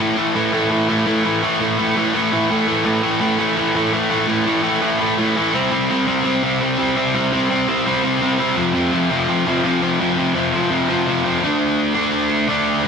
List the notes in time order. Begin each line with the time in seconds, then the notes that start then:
0.00 A2 E3 A3
0.17 A2 E3 A3
0.35 A2 E3 A3
0.53 A2 E3 A3
0.71 A2 E3 A3
0.89 A2 E3 A3
1.06 A2 E3 A3
1.24 A2 E3 A3
1.43 A2 E3 A3
1.61 A2 E3 A3
1.78 A2 E3 A3
1.96 A2 E3 A3
2.14 A2 E3 A3
2.32 A2 E3 A3
2.50 A2 E3 A3
2.67 A2 E3 A3
2.85 A2 E3 A3
3.03 A2 E3 A3
3.20 A2 E3 A3
3.39 A2 E3 A3
3.57 A2 E3 A3
3.75 A2 E3 A3
3.93 A2 E3 A3
4.10 A2 E3 A3
4.27 A2 E3 A3
4.46 A2 E3 A3
4.63 A2 E3 A3
4.82 A2 E3 A3
5.00 A2 E3 A3
5.18 A2 E3 A3
5.36 A2 E3 A3
5.54 C3 G3 C4
5.71 C3 G3 C4
5.89 C3 G3 C4
6.07 C3 G3 C4
6.24 C3 G3 C4
6.43 C3 G3 C4
6.61 C3 G3 C4
6.78 C3 G3 C4
6.96 C3 G3 C4
7.15 C3 G3 C4
7.32 C3 G3 C4
7.50 C3 G3 C4
7.68 C3 G3 C4
7.86 C3 G3 C4
8.03 C3 G3 C4
8.22 C3 G3 C4
8.39 C3 G3 C4
8.57 F2 C3 F3
8.75 F2 C3 F3
8.93 F2 C3 F3
9.11 F2 C3 F3
9.29 F2 C3 F3
9.46 F2 C3 F3
9.64 F2 C3 F3
9.82 F2 C3 F3
10.00 F2 C3 F3
10.18 F2 C3 F3
10.35 F2 C3 F3
10.53 F2 C3 F3
10.70 F2 C3 F3
10.89 F2 C3 F3
11.07 F2 C3 F3
11.25 F2 C3 F3
11.42 D3 A3 D4
11.94 D3 A3 D4
12.48 D3 A3 D4
12.84 G2 D3